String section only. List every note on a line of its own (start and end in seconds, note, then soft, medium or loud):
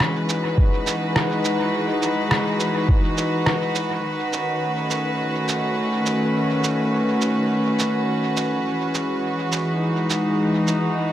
0.00 4.04 E3 medium
0.00 4.04 G#3 medium
0.00 1.19 C#4 medium
0.00 11.12 F#4 medium
0.00 11.12 B4 medium
0.14 5.91 D#4 medium
4.04 8.66 D#3 medium
4.32 9.79 C#4 medium
4.66 8.65 A3 medium
8.66 11.12 E3 medium
8.88 11.12 G#3 medium
9.73 11.12 D#4 medium